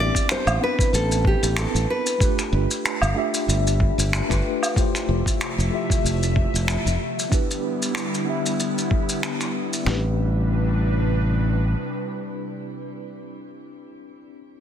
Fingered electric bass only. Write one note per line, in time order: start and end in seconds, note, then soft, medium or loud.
0.00 0.10 A1 medium
0.47 0.57 A1 loud
0.93 1.35 A1 medium
1.43 1.65 A1 loud
1.75 1.85 A1 loud
2.52 2.65 G1 loud
3.02 3.12 G1 loud
3.48 3.90 G1 medium
3.98 4.20 G1 loud
4.30 4.40 G1 medium
5.09 5.21 F1 medium
5.58 5.68 F1 medium
6.04 6.46 F1 medium
6.54 6.76 F1 medium
6.86 6.96 F1 medium
9.86 11.74 A1 medium